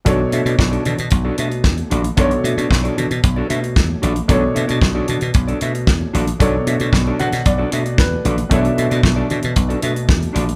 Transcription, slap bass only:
\new Staff \with { instrumentName = "Slap bass" } { \clef bass \time 4/4 \key b \minor \tempo 4 = 114 b,,8 b,16 b,16 b,,8 b,16 b,16 b,,8 b,8 e,8 ais,,8 | b,,8 b,16 b,16 b,,8 b,16 b,16 b,,8 b,8 e,8 ais,,8 | b,,8 b,16 b,16 b,,8 b,16 b,16 b,,8 b,8 e,8 ais,,8 | b,,8 b,16 b,16 b,,8 b,16 b,16 b,,8 b,8 e,8 ais,,8 |
b,,8 b,16 b,16 b,,8 b,16 b,16 b,,8 b,8 e,8 ais,,8 | }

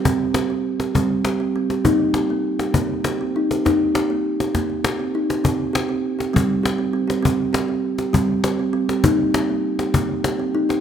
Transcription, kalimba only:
\new Staff \with { instrumentName = "Kalimba" } { \time 6/8 \key c \minor \tempo 4. = 67 << { r8 g'16 c'8 g'16 c'8 g'16 c'8 g'16 | bes8 g'16 bes8 g'16 r8 g'16 c'8 g'16 | bes8 g'16 bes8 g'16 r8 g'16 c'8 g'16 | c'8 g'16 c'8 g'16 c'8 g'16 c'8 g'16 |
c'8 g'16 c'8 g'16 c'8 g'16 c'8 g'16 | bes8 g'16 bes8 g'16 r8 g'16 c'8 g'16 | } \\ { c'4. g4 c'8 | ees'4. bes4 ees'8 | ees'4. bes4 ees'8 | r4. g4 c'8 |
r4. g4 c'8 | ees'4. bes4 ees'8 | } >> }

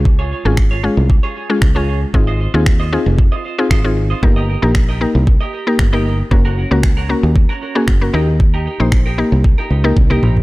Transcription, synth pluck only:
\new Staff \with { instrumentName = "Synth pluck" } { \time 4/4 \key ees \mixolydian \tempo 4 = 115 <aes des' f' aes'>8 r16 <aes des' f' aes'>8 r16 <aes des' f' aes'>4 r16 <aes des' f' aes'>16 r16 <aes des' f' aes'>8 r16 | <c' ees' f' aes'>8 r16 <c' ees' f' aes'>8 r16 <c' ees' f' aes'>4 r16 <c' ees' f' aes'>16 r16 <c' ees' f' aes'>8 r16 | <bes ees' g' bes'>8 r16 <bes ees' g' bes'>8 r16 <bes ees' g' bes'>4 r16 <bes ees' g' bes'>16 r16 <bes ees' g' bes'>8 r16 | <bes des' ges' bes'>8 r16 <bes des' ges' bes'>8 r16 <bes des' ges' bes'>4 r16 <bes des' ges' aes'>16 r16 <bes des' ges' bes'>16 <bes ees' g' bes'>8~ |
<bes ees' g' bes'>8 r16 <bes ees' g' c''>8 r16 <bes ees' g' bes'>4 r16 <bes ees' g' bes'>16 r16 <bes ees' g' bes'>8 r16 | }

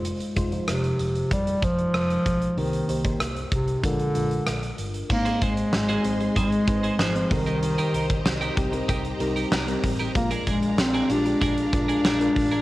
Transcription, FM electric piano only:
<<
  \new Staff \with { instrumentName = "FM electric piano" } { \time 4/4 \key aes \lydian \tempo 4 = 95 <aes ees' f' c''>8 <aes ees' f' c''>16 <f ees' f' c''>2 r4 r16 | <bes ees' g' c''>8 <bes ees' g' c''>16 <bes ees' g' c''>4~ <bes ees' g' c''>16 <aes d' f' bes'>8 <aes d' f' bes'>4. | <aes c' ees' c''>4. <aes c' ees' c''>16 <aes c' ees' c''>8. <aes c' ees' ces'' c''>8. <aes c' ees' c''>16 <g c' ees' a' bes'>8~ | <g c' ees' a' bes'>4. <g c' ees' g'>16 <g c' ees' bes'>8. <g c' ees' bes'>8. <g c' ees' bes'>8. |
<aes d' f' bes'>4. <aes d' f' g'>16 <aes d' f' g'>8. <aes d' f' bes'>8. <aes d' f' bes'>8. | }
  \new Staff \with { instrumentName = "FM electric piano" } { \clef bass \time 4/4 \key aes \lydian r1 | c4. r8 bes,4. r8 | aes,4. r2 c8~ | c4 r2. |
bes,4. r2 r8 | }
>>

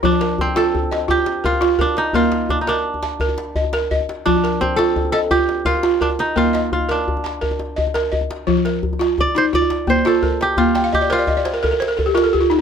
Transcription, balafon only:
\new Staff \with { instrumentName = "Balafon" } { \time 12/8 \key f \mixolydian \tempo 4. = 114 << { <f' bes'>8 bes'4. r8 ees''4. bes'4 bes'4 | bes'4. r4 a''4. ees''4 ees''4 | f'8 bes'4. r8 ees''4. bes'4 bes'4 | bes'8 ees''4. r8 a''4. ees''4 ees''4 |
f'8 bes'4. r8 ees'4. bes4 bes'4~ | bes'8 g''16 f''16 ees''16 d''16 c''16 d''16 ees''16 d''16 c''16 bes'16 a'16 bes'16 c''16 bes'16 a'16 g'16 f'16 a'16 g'16 f'16 ees'8 | } \\ { f4 r8 f'4 r8 f'4 r8 f'4 r8 | bes4 r8 bes'4 r8 bes'4 r8 bes'4 r8 | f4 r8 f'4 r8 f'4 r8 f'4 r8 | bes4 r8 bes'4 r8 bes'4 r8 bes'4 r8 |
f4 r8 f'4 r8 f'4 r8 f'4 r8 | bes4 r8 bes'4 r8 bes'4 r8 bes'4 r8 | } >> }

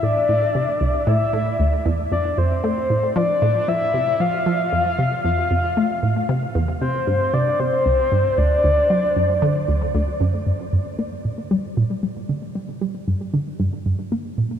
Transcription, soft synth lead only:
\new Staff \with { instrumentName = "Soft synth lead" } { \time 4/4 \key d \minor \tempo 4 = 115 d''2 e''4. r8 | d''8 c''8 c''4 d''4 e''4 | f''2 f''4. r8 | r4 c''4 d''8 c''4. |
d''2. r4 | \key g \minor r1 | r1 | }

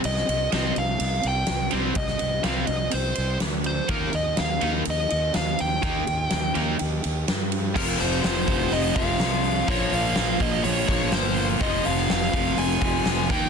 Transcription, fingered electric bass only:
\new Staff \with { instrumentName = "Fingered electric bass" } { \clef bass \time 4/4 \key c \phrygian \tempo 4 = 124 c,8 c,8 c,8 c,8 c,8 c,8 c,8 c,8 | c,8 c,8 c,8 c,8 c,8 c,8 d,4 | ees,8 ees,8 ees,8 ees,8 ees,8 ees,8 ees,8 ees,8 | ees,8 ees,8 ees,8 ees,8 ees,8 ees,8 g,4 |
f,,8 f,,8 f,,8 f,,8 f,,8 f,,8 c,4 | bes,,8 bes,,8 bes,,8 bes,,8 bes,,8 bes,,8 g,,4 | f,,8 f,,8 f,,8 f,,8 f,,8 f,,8 f,,8 ees,8 | }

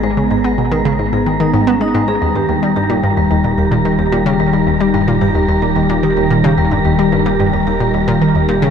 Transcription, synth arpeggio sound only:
\new Staff \with { instrumentName = "Synth arpeggio sound" } { \clef bass \time 4/4 \key dis \phrygian \tempo 4 = 110 gis,16 cis16 gis,16 b16 b,16 dis16 cis16 gis,16 gis,16 dis16 dis16 gis,16 b16 gis16 gis,16 gis,16 | dis,16 g,16 dis,16 g16 g,16 ais,16 g,16 dis,16 dis,16 ais,16 dis,16 ais,16 dis16 dis,16 ais,16 cis16 | dis,16 g,16 dis,16 g16 g,16 ais,16 g,16 dis,16 dis,16 ais,16 dis,16 ais,16 dis16 dis,16 ais,16 cis16 | dis,16 g,16 dis,16 g16 g,16 ais,16 g,16 dis,16 dis,16 ais,16 dis,16 ais,16 dis16 dis,16 ais,16 cis16 | }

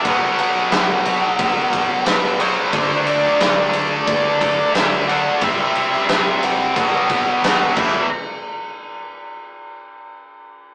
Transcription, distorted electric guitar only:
\new Staff \with { instrumentName = "Distorted electric guitar" } { \clef bass \time 4/4 \key b \phrygian \tempo 4 = 89 <b, fis b>2.~ <b, fis b>8 <b, fis b>8 | <d a d'>2.~ <d a d'>8 <d a d'>8 | <c g c'>2 <b, fis b>4. <e, b, e>8 | r1 | }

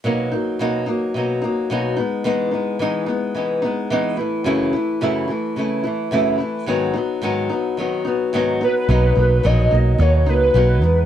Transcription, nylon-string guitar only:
\new Staff \with { instrumentName = "Nylon-string guitar" } { \time 4/4 \key b \major \tempo 4 = 108 <b, fis ais dis'>8 <fis ais dis'>8 <b, fis ais dis'>8 <fis ais dis'>8 <b, fis ais dis'>8 <fis ais dis'>8 <b, fis ais dis'>8 <gis b dis'>8 | <e gis b dis'>8 <gis b dis'>8 <e gis b dis'>8 <gis b dis'>8 <e gis b dis'>8 <gis b dis'>8 <e gis b dis'>8 <e a e'>8 | <fis, cis e a e'>8 <e a e'>8 <fis, cis e a e'>8 <e a e'>8 <cis e a e'>8 <e a e'>8 <fis, cis e a e'>8 <e a e'>8 | <gis, dis fis b dis'>8 <fis b dis'>8 <gis, dis fis b dis'>8 <fis b dis'>8 <dis fis b dis'>8 <fis b dis'>8 <gis, dis fis b dis'>8 <fis b dis'>8 |
<b, fis ais dis'>8 <fis ais dis'>8 <b, fis ais dis'>8 <fis ais dis'>8 <b, fis ais dis'>8 <fis ais dis'>8 <b, fis ais dis'>8 <gis b dis'>8 | }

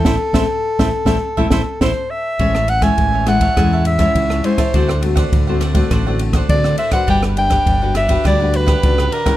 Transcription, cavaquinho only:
\new Staff \with { instrumentName = "Cavaquinho" } { \time 4/4 \key a \minor \tempo 4 = 102 <a' c'' e''>16 r16 <a' c'' e''>16 r8 <a' c'' e''>16 r16 <a' c'' e''>16 r16 <a' c'' e''>16 <a' c'' e''>16 r16 <a' c'' e''>16 r8. | \key a \major <gis' cis'' e'' a''>16 <cis'' e'' a''>16 r16 <cis'' e'' a''>8 <cis'' e'' a''>16 <gis' cis'' e'' a''>16 <cis'' e'' a''>16 <gis' cis'' e'' a''>16 <cis'' e'' a''>16 r16 <cis'' e'' a''>8 <cis'' e'' a''>16 <gis' cis'' e'' a''>16 <cis'' e'' a''>16 | <d' c'' d'' fis''>16 <c'' d'' fis''>16 r16 <c'' d'' fis''>8 <c'' d'' fis''>16 <d' c'' d'' fis''>16 <c'' d'' fis''>16 <d' c'' d'' fis''>16 <c'' d'' fis''>16 r16 <c'' d'' fis''>8 <c'' d'' fis''>16 <d' c'' d'' fis''>16 <c'' d'' fis''>16 | <d' g' b' fis''>16 <g' b' fis''>16 r16 <g' b' fis''>8 <g' b' fis''>16 <d' g' b' fis''>16 <g' b' fis''>16 <d' g' b' fis''>16 <g' b' fis''>16 r16 <g' b' fis''>8 <g' b' fis''>16 <d' g' b' fis''>16 <g' b' fis''>16 | }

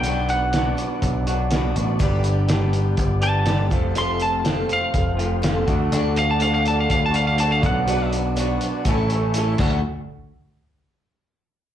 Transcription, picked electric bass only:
\new Staff \with { instrumentName = "Picked electric bass" } { \clef bass \time 4/4 \key b \minor \tempo 4 = 122 b,,4. r8 b,,4. a,,8 | g,,2 g,,4. f,,8~ | f,,4. r8 f,,4. d,8 | d,2 d,4. b,,8~ |
b,,4. r8 a,,4. d,8 | r1 | }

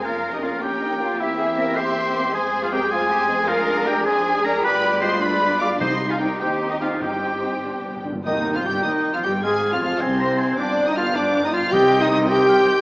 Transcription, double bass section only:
\new Staff \with { instrumentName = "Double bass section" } { \clef bass \time 6/8 \key f \minor \tempo 4. = 104 f,2. | e,2. | f,2.~ | \key c \minor f,2. |
g,,2. | c,4. ees,4. | g,2~ g,8 r8 | ees,8. r16 g,,8 ees,8. r16 g,,8 |
aes,,8. r16 f,,8 c,4. | g,,2. | c,2. | }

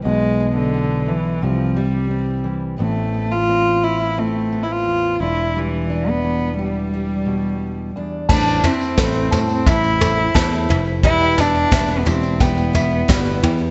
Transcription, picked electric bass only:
\new Staff \with { instrumentName = "Picked electric bass" } { \clef bass \time 4/4 \key a \minor \tempo 4 = 87 b,,2 c,2 | a,,2.~ a,,8 e,,8~ | e,,2.~ e,,8 r8 | a,,8 r8 a,,8 a,8 a,,4 e,8 f,,8 |
e,,4 e,,8 e,,8 e,,4 g,,8 e,8 | }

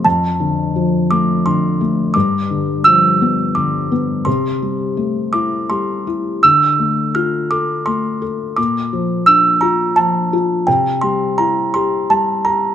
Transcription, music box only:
\new Staff \with { instrumentName = "Music box" } { \time 3/4 \key c \mixolydian \tempo 4 = 85 a''4. d'''8 c'''4 | d'''4 e'''4 d'''4 | c'''4. d'''8 c'''4 | e'''4 f'''8 d'''8 c'''4 |
d'''4 e'''8 bes''8 a''4 | g''8 c'''8 bes''8 c'''8 a''8 bes''8 | }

